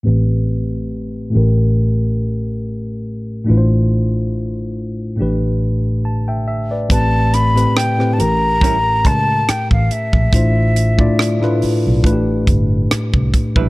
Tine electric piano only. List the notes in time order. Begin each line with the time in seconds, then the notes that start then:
0.03 A2 A3 C4 G4 B4
1.30 A2 A3 C#4
1.35 G4 A#4
3.44 A2 A3 D4 E4
3.50 F4 B4
3.57 C5
5.16 A2 A3 D4
5.21 G4 B4
6.05 A5
6.28 E5 G5
6.48 E5
6.71 B4 D5
6.89 A2 A3 C4 G4 B4
7.54 A2 A3 C4 G4 B4
7.97 A2 A3 C4 G4 B4
8.17 A2 A3 C#4 G4 A#4
10.32 A2 A3 D4 E4 F4 C5
10.97 A2 A3 D4 E4 F4 D5
11.40 A2 A3 D4 E4 F4 B4
12.03 A2 A3 D4 F4 B4
12.12 G4